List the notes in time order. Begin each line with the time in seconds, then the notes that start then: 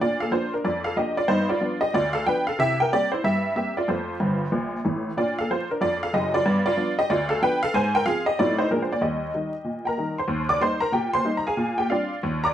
0.01 A#2 D4 F4 D5
0.20 A4 F5
0.31 F3 A#3 D4 F4 C5
0.53 D4 A#4
0.65 F2 F4 D5
0.84 A4 F5
0.96 F3 A#3 D4 G4 D#5
1.17 F4 D5
1.28 G2 B3 D#4 C5
1.49 F4 D5
1.61 F3 B3 D4
1.81 G4 D#5
1.94 D2 F4 D5
2.13 A4 F5
2.26 F3 B3 D4 B4 G5
2.47 A4 F5
2.59 C3 E4 G4 E5
2.80 A#4 G5
2.93 G3 A#3 C4 G4 D5
3.12 E4 C5
3.24 G2 G4 E5
3.56 G3 A#3 C4 G4 E5
3.77 F4 D5
3.88 F2 A3 F4 C5
4.20 G1 G2
4.52 A#1 A#2
4.85 A1 A2
5.17 A#2 D4 F4 D5
5.38 A4 F5
5.51 F3 A#3 F4 C5
5.71 D4 A#4
5.81 F2 F4 D5
6.03 A4 F5
6.13 F#1 F#2 G4 D#5
6.34 F4 D5
6.46 G2 B3
6.66 F4 D5
6.77 F3 B3 D4
6.99 G4 D#5
7.10 D2 F4 D5
7.29 A4 F5
7.42 F3 B3 D4 B4 G5
7.63 A4 F5
7.74 G#2 C5 G#5
7.95 A#4 G5
8.05 F3 C4 F4 G#4 F5
8.26 G4 D#5
8.39 A2 F#3 A3 C4 D#4 F4 D5
8.59 D#4 C5
8.71 A#2 F3 G#3 D4 A#4
8.82 C5
8.92 D5
9.01 D#2 G3 G4 D#5
9.34 D#3 G3 D#4
9.64 A#2
9.85 A#4 G5 A#5
9.98 D#3 G3 D#4
10.18 C5 C6
10.28 D#2
10.49 D5 D6
10.60 G3 A#3 D#4 C5 C6
10.80 A#4 A#5
10.92 A#2 G4 G5
11.13 C5 C6
11.24 G3 A#3 D#4
11.37 A#5
11.47 G#4 F5 G#5
11.57 A#2
11.78 G4 G5
11.90 G3 C4 D4 F4 D5 F5
12.23 D#2
12.44 D5 A#5 D6